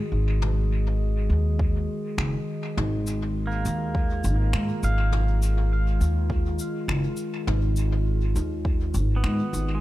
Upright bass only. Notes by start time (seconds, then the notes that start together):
0.12 G#1
1.30 D#2
2.18 F#1
2.77 G#1
3.65 D#2
4.24 G#1
4.53 G#2
4.83 G#1
6.01 D#2
6.88 F#1
7.47 G#1
8.36 D#2
8.94 G#1
9.24 G#2
9.53 G#1